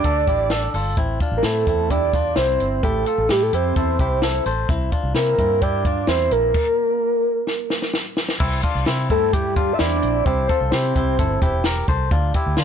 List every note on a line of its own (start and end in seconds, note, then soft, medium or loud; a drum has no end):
0.00 0.70 D5 medium
0.04 0.24 D2 medium
0.04 0.29 D4 medium
0.04 0.28 A4 medium
0.04 kick medium
0.04 closed hi-hat medium
0.27 0.67 A1 medium
0.27 0.51 E4 soft
0.27 0.51 G4 medium
0.27 kick medium
0.27 closed hi-hat medium
0.50 0.75 D4 medium
0.50 0.74 A4 medium
0.50 snare medium
0.50 closed hi-hat medium
0.74 0.94 G1 medium
0.74 0.97 F4 medium
0.74 0.98 A4 medium
0.74 open hi-hat medium
0.97 1.17 A1 medium
0.97 1.21 C4 medium
0.97 1.21 E4 medium
0.97 kick medium
0.97 closed hi-hat soft
1.20 1.45 D4 medium
1.20 1.44 F4 medium
1.20 kick medium
1.20 closed hi-hat medium
1.32 1.42 A1 medium
1.37 1.45 A#4 medium
1.43 1.63 A2 medium
1.43 1.68 C4 medium
1.43 1.67 E4 medium
1.43 1.92 A4 medium
1.43 snare medium
1.43 closed hi-hat medium
1.67 2.33 E2 medium
1.67 1.91 C4 medium
1.67 1.90 E4 medium
1.67 kick medium
1.67 closed hi-hat medium
1.90 2.14 E4 medium
1.90 2.14 G4 medium
1.90 2.38 D5 loud
1.90 kick medium
1.90 closed hi-hat medium
2.13 2.38 D4 medium
2.13 2.37 F4 medium
2.13 kick medium
2.13 closed hi-hat medium
2.36 2.57 C2 medium
2.36 2.81 C4 soft
2.36 2.81 E4 medium
2.36 2.84 C5 loud
2.36 snare loud
2.36 closed hi-hat medium
2.60 2.80 G1 medium
2.60 closed hi-hat medium
2.83 3.03 A1 medium
2.83 3.07 E4 medium
2.83 3.07 G4 medium
2.83 3.33 A4 loud
2.83 kick medium
2.83 closed hi-hat medium
3.06 3.30 F4 medium
3.06 3.30 A4 medium
3.06 closed hi-hat medium
3.18 3.28 A1 medium
3.29 3.49 A2 medium
3.29 3.53 E4 medium
3.29 3.52 G4 medium
3.29 3.44 G4 medium
3.29 snare medium
3.29 closed hi-hat medium
3.42 3.56 A4 medium
3.53 3.73 F2 medium
3.53 3.76 E4 medium
3.53 3.77 G4 medium
3.53 4.46 C5 medium
3.53 closed hi-hat medium
3.76 3.96 E2 medium
3.76 4.00 E4 medium
3.76 4.00 A4 medium
3.76 kick medium
3.76 closed hi-hat medium
3.99 4.39 C2 medium
3.99 4.23 E4 medium
3.99 4.23 G4 medium
3.99 kick medium
3.99 closed hi-hat medium
4.22 4.47 E4 medium
4.22 4.46 A4 medium
4.22 snare loud
4.22 closed hi-hat medium
4.46 4.66 A1 medium
4.46 4.70 A4 medium
4.46 4.69 C5 medium
4.46 closed hi-hat medium
4.69 4.89 C2 medium
4.69 4.93 C4 medium
4.69 4.92 E4 medium
4.69 kick loud
4.69 closed hi-hat medium
4.92 5.16 D4 medium
4.92 5.15 F4 medium
4.92 kick medium
4.92 closed hi-hat medium
5.04 5.14 C2 medium
5.15 5.35 C3 medium
5.15 5.39 C4 soft
5.15 5.38 E4 medium
5.15 5.63 A#4 medium
5.15 snare medium
5.15 closed hi-hat medium
5.38 6.05 G2 medium
5.38 5.63 C4 medium
5.38 5.62 E4 medium
5.38 kick medium
5.38 closed hi-hat medium
5.61 5.86 E4 soft
5.61 5.85 G4 medium
5.61 6.07 D5 medium
5.61 kick medium
5.61 closed hi-hat medium
5.85 6.09 D4 medium
5.85 6.08 F4 medium
5.85 kick medium
5.85 closed hi-hat medium
6.07 6.28 E2 medium
6.07 6.52 C4 medium
6.07 6.52 E4 medium
6.07 6.33 C5 loud
6.07 snare loud
6.07 closed hi-hat medium
6.31 6.51 A#1 medium
6.31 7.94 A#4 medium
6.31 closed hi-hat medium
6.54 kick loud
6.54 crash medium
7.47 snare soft
7.70 snare medium
7.82 snare soft
7.94 snare medium
8.17 snare medium
8.29 snare medium
8.40 8.60 C2 medium
8.40 8.64 C4 medium
8.40 8.63 E4 medium
8.40 kick medium
8.40 crash medium
8.63 8.87 D4 medium
8.63 8.87 F4 medium
8.63 kick medium
8.63 closed hi-hat medium
8.75 8.85 C2 medium
8.86 9.10 C3 medium
8.86 9.10 C4 medium
8.86 9.09 E4 medium
8.86 snare loud
8.86 closed hi-hat medium
9.10 9.76 G2 medium
9.10 9.34 C4 medium
9.10 9.33 E4 medium
9.10 9.34 A4 medium
9.10 kick medium
9.10 closed hi-hat medium
9.33 9.57 E4 medium
9.33 9.74 G4 medium
9.33 9.56 G4 medium
9.33 kick medium
9.33 closed hi-hat medium
9.56 9.80 D4 medium
9.56 9.80 F4 medium
9.56 kick medium
9.56 closed hi-hat medium
9.73 9.80 E5 medium
9.78 10.00 E2 medium
9.78 10.24 C4 medium
9.78 10.23 E4 medium
9.78 10.26 D5 loud
9.78 snare loud
9.78 closed hi-hat medium
10.02 10.23 A#1 medium
10.02 closed hi-hat medium
10.25 10.46 C2 medium
10.25 10.49 E4 medium
10.25 10.49 G4 medium
10.25 10.47 C5 medium
10.25 kick medium
10.25 closed hi-hat medium
10.48 10.72 F4 medium
10.48 10.73 A4 medium
10.48 10.58 C5 loud
10.48 kick medium
10.48 closed hi-hat medium
10.61 10.71 C2 medium
10.70 10.92 C3 medium
10.70 10.95 E4 medium
10.70 10.95 G4 medium
10.70 11.60 C5 medium
10.70 snare loud
10.70 closed hi-hat medium
10.96 11.15 C2 medium
10.96 11.19 E4 medium
10.96 11.19 G4 medium
10.96 kick medium
10.96 closed hi-hat medium
11.19 11.39 G1 medium
11.19 11.42 E4 medium
11.19 11.42 A4 medium
11.19 kick medium
11.19 closed hi-hat medium
11.42 11.81 E1 medium
11.42 11.65 E4 medium
11.42 11.65 G4 medium
11.42 kick medium
11.42 closed hi-hat medium
11.64 11.89 G4 medium
11.64 11.88 A#4 medium
11.64 snare loud
11.64 closed hi-hat medium
11.88 12.08 C2 medium
11.88 12.11 A4 medium
11.88 12.12 C5 medium
11.88 kick medium
11.88 closed hi-hat medium
12.11 12.31 D2 medium
12.11 12.35 D4 medium
12.11 12.35 F4 loud
12.11 kick loud
12.11 closed hi-hat medium
12.34 12.59 E4 medium
12.34 12.57 G4 medium
12.34 kick medium
12.34 closed hi-hat medium
12.46 12.56 D2 medium
12.57 12.64 D3 loud
12.57 12.64 D4 medium
12.57 12.64 F4 medium
12.57 snare medium
12.57 closed hi-hat medium